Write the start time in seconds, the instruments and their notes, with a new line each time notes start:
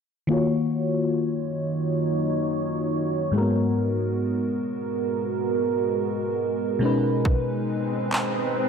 0.27 fm electric piano D#3 A#3 F4, ambient pad F#3 D#4 C#5
0.32 fm electric piano F#4 C#5
3.31 fm electric piano G#2 G#3 A#3, ambient pad G#3 B3 F#4 A#4
3.36 fm electric piano F#4 A#4
3.41 fm electric piano B3
6.79 fm electric piano B2 G#3 C#4, ambient pad D#4 B4
6.84 fm electric piano D#4 B4
7.25 kick, swell
8.13 clap